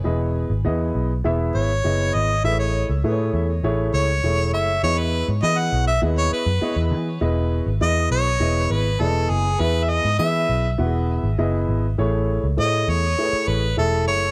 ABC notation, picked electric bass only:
X:1
M:4/4
L:1/16
Q:1/4=101
K:E
V:1 name="Picked electric bass" clef=bass
E,,,3 G,,, E,,2 B,,,2 E,,,2 G,,,2 F,,,2 G,,,2 | A,,,3 C,, A,,2 E,,2 A,,,2 C,,2 E,,,2 F,,,2 | E,,3 G,, E,2 B,,,2 D,,2 z F,, z E,, E,2 | E,,,3 G,,, E,,2 B,,,2 E,,,2 G,,,2 E,,,2 F,,,2 |
E,,3 G,, E,2 B,,,2 E,,,3 G,,, F,,,2 G,,,2 | A,,,3 C,, A,,2 E,,2 z2 A,,,2 E,,,2 F,,,2 |]